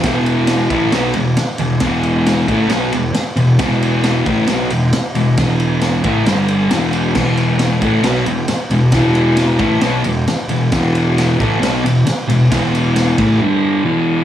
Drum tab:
CC |--------|--------|--------|--------|
RD |xxxxxxxx|xxxxxxxx|xxxxxxxx|xxxxxxxx|
SD |o-o-o-o-|o-o-o-o-|o-o-o-o-|o-o-o-o-|
BD |o--o----|o--o----|o--o----|o--o----|

CC |x-------|--------|--------|--------|
RD |-xxxxxxx|xxxxxxxx|xxxxxxxx|xxxx----|
SD |o-o-o-o-|o-o-o-o-|o-o-o-o-|o-o-----|
BD |o--o----|o--o----|o--o----|o--o----|